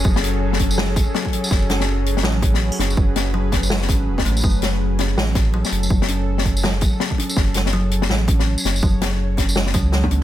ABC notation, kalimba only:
X:1
M:4/4
L:1/8
Q:"Swing 16ths" 1/4=164
K:F#m
V:1 name="Kalimba" clef=bass
F, z2 C z2 F, z | z C z2 F, z2 C | z2 F, z2 C z A, | F, z2 C z2 F, z |
z C z2 F, z2 C | z2 F, z2 C z2 | F, z2 C z F, F, C |]